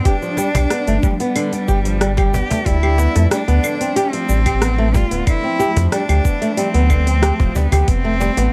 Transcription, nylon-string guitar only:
0.05 0.15 G4 medium
0.22 0.37 F3 medium
0.38 0.48 G3 loud
0.55 0.69 G4 medium
0.71 0.86 B3 medium
0.88 0.96 A3 medium
1.03 1.13 G3 loud
1.20 1.35 B3 loud
1.36 1.51 D3 medium
1.53 1.67 B3 medium
1.68 1.78 G4 loud
1.85 2.00 F3 medium
2.01 2.11 G3 loud
2.18 2.32 G4 medium
2.33 2.49 B3 medium
2.50 2.59 A3 medium
2.66 2.76 G3 loud
2.83 2.97 G4 medium
2.99 3.14 B3 medium
3.16 3.25 A3 loud
3.31 3.41 G3 loud
3.48 3.63 B3 loud
3.64 3.79 D3 medium
3.81 3.96 C4 medium
3.96 4.06 G4 loud
4.13 4.28 F3 medium
4.29 4.39 G3 loud
4.46 4.60 G4 medium
4.61 4.77 B3 medium
4.78 4.88 A3 loud
4.94 5.04 G3 loud
5.11 5.26 B3 medium
5.27 5.42 D3 medium
5.44 5.59 C4 medium
5.59 5.69 G4 loud
5.76 5.91 F3 medium
5.92 6.02 G3 loud
6.09 6.23 G4 medium
6.25 6.40 B3 medium
6.42 6.51 A3 loud
6.57 6.67 G3 loud
6.74 6.89 B3 loud
6.90 7.05 D3 medium
7.07 7.22 C4 medium
7.22 7.32 G4 loud
7.39 7.54 F3 medium
7.55 7.65 G3 loud
7.72 7.86 G4 medium
7.88 8.03 B3 medium
8.05 8.14 A3 loud
8.20 8.30 G3 loud
8.37 8.52 B3 loud

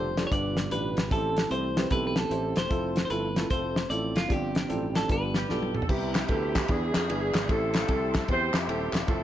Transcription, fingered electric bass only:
0.00 0.25 F1 medium
0.31 0.65 G1 medium
0.72 0.94 A1 medium
0.98 1.09 G#1 medium
1.11 1.45 A1 medium
1.51 1.85 C2 medium
1.91 2.25 B1 medium
2.30 2.53 A1 medium
2.57 2.69 E1 medium
2.71 3.05 F1 medium
3.10 3.44 G1 medium
3.50 3.84 F1 medium
3.90 4.12 A1 medium
4.16 4.28 F#1 medium
4.30 4.64 G1 medium
4.70 5.04 A1 medium
5.10 5.44 G1 loud
5.51 5.72 B1 medium
5.76 5.88 B1 medium
5.89 6.23 C2 loud
6.29 6.63 D2 loud
6.69 6.91 E2 medium
6.96 7.08 F2 loud
7.10 7.32 G1 medium
7.35 7.47 G#1 medium
7.50 7.83 A1 loud
7.89 8.23 C2 loud
8.29 8.51 E2 loud
8.54 8.66 F2 medium
8.68 8.90 D#1 medium
8.93 9.06 E1 medium
9.08 9.23 F1 loud

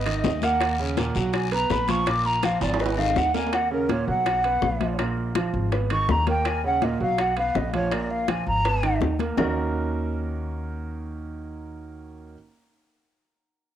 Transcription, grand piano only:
0.06 0.36 D#3 medium
0.06 0.36 D#4 medium
0.43 0.72 A#3 medium
0.43 0.73 A#4 medium
0.79 0.94 C#3 medium
0.79 0.94 C#4 medium
0.97 1.12 A#2 medium
0.97 1.12 A#3 medium
1.15 1.45 F#3 medium
1.15 1.45 F#4 medium
1.52 1.82 B3 medium
1.52 1.82 B4 medium
1.88 2.03 F3 medium
1.88 2.03 F4 medium
2.07 2.37 A#2 medium
2.07 2.37 A#3 medium
2.43 2.73 F3 medium
2.43 2.73 F4 medium
2.81 2.95 B3 medium
2.81 2.95 B4 medium
2.98 3.28 D#3 medium
2.98 3.28 D#4 medium
3.35 3.65 A#3 medium
3.35 3.65 A#4 medium
3.71 3.86 C#3 medium
3.71 3.86 C#4 medium
3.90 4.04 A#2 medium
3.90 4.05 A#3 medium
4.08 4.38 F#3 medium
4.08 4.38 F#4 medium
4.45 4.75 B3 medium
4.45 4.75 B4 medium
4.81 4.96 F3 medium
4.81 4.96 F4 medium
4.99 5.29 A#2 medium
4.99 5.30 A#3 medium
5.37 5.66 F3 medium
5.37 5.66 F4 medium
5.72 5.87 B3 medium
5.72 5.88 B4 medium
5.91 6.21 D#3 medium
5.91 6.21 D#4 medium
6.28 6.57 A#3 medium
6.28 6.57 A#4 medium
6.64 6.79 C#3 medium
6.64 6.79 C#4 medium
6.82 6.97 A#2 medium
6.82 6.97 A#3 medium
7.01 7.31 F#3 medium
7.01 7.31 F#4 medium
7.37 7.67 B3 medium
7.37 7.67 B4 medium
7.74 7.89 F3 medium
7.74 7.89 F4 medium
7.92 8.22 A#2 medium
7.92 8.22 A#3 medium
8.29 8.58 F3 medium
8.29 8.59 F4 medium
8.65 8.80 B3 soft
8.65 8.80 B4 soft
8.83 9.13 D#3 medium
8.83 9.13 D#4 medium
9.19 9.34 A#3 medium
9.19 9.35 A#4 medium
9.37 12.34 D#3 medium
9.37 12.34 A#3 medium
9.37 12.34 C#4 medium
9.37 12.34 D#4 medium
9.37 12.35 F#4 medium
9.37 12.35 A#4 medium

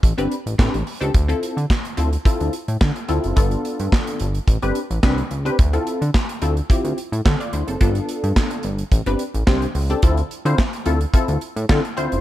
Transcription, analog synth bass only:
0.03 0.13 A1 loud
0.18 0.27 G1 medium
0.46 0.55 A1 medium
0.59 0.69 A2 loud
0.74 0.83 A1 medium
1.01 1.10 C#2 medium
1.15 1.34 D2 loud
1.57 1.66 D3 medium
1.98 2.17 D2 medium
2.40 2.49 D2 medium
2.68 2.77 A2 medium
2.81 2.91 D3 loud
3.09 3.19 D2 medium
3.24 3.33 F#1 medium
3.37 3.56 G1 loud
3.80 3.89 G2 medium
4.21 4.40 G1 medium
4.47 4.58 A1 medium
4.63 4.72 G1 medium
4.91 5.00 A1 medium
5.03 5.23 C2 medium
5.31 5.50 C#2 medium
5.59 5.78 D2 loud
6.01 6.10 D3 medium
6.42 6.61 D2 medium
6.84 6.93 D2 medium
7.12 7.21 A2 medium
7.26 7.36 D3 loud
7.53 7.63 D2 medium
7.67 7.77 F#1 medium
7.81 8.00 G1 loud
8.23 8.32 G2 medium
8.64 8.84 G1 medium
8.92 9.02 A1 loud
9.06 9.16 G1 medium
9.34 9.44 A1 medium
9.47 9.67 C2 medium
9.75 9.94 C#2 medium
10.03 10.22 D2 loud
10.45 10.54 D3 medium
10.86 11.06 D2 medium
11.28 11.38 D2 medium
11.56 11.66 A2 medium
11.70 11.80 D3 loud
11.98 12.08 D2 medium
12.12 12.21 F#1 medium

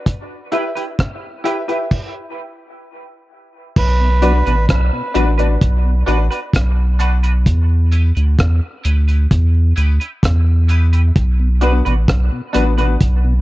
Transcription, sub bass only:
3.77 4.43 B1 loud
4.47 4.67 A1 medium
4.69 4.91 B1 loud
5.15 5.57 A1 medium
5.62 6.04 B1 loud
6.08 6.29 A1 medium
6.54 7.48 B1 medium
7.46 8.12 E2 medium
8.17 8.37 D2 medium
8.39 8.60 E2 loud
8.85 9.27 D2 medium
9.31 9.73 E2 loud
9.77 9.99 D2 medium
10.23 11.12 E2 loud
11.16 11.82 B1 loud
11.86 12.07 A1 medium
12.08 12.30 B1 loud
12.55 12.97 A1 medium
13.01 13.41 B1 loud

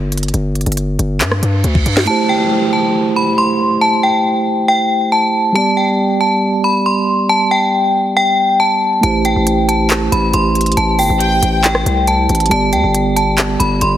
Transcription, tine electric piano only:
2.05 5.50 A3 medium
2.05 5.51 E4 medium
2.05 5.52 G4 medium
2.11 5.53 C5 medium
5.53 8.98 G3 medium
5.53 9.00 B3 medium
5.53 8.99 G4 medium
5.58 9.01 D5 medium
9.01 12.46 A3 medium
9.01 12.47 E4 medium
9.01 12.48 G4 medium
9.06 12.49 C5 medium
12.48 13.97 G3 medium
12.48 13.97 B3 medium
12.48 13.97 G4 medium
12.53 13.97 D5 medium

